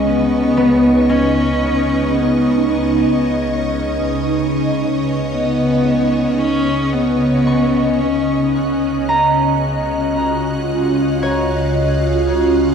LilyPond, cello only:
\new Staff \with { instrumentName = "Cello" } { \time 4/4 \key des \mixolydian \tempo 4 = 56 ces'4 des'4 ces'8 ces'4 r8 | r4 ces'4 des'8 ces'4 des'8 | r1 | }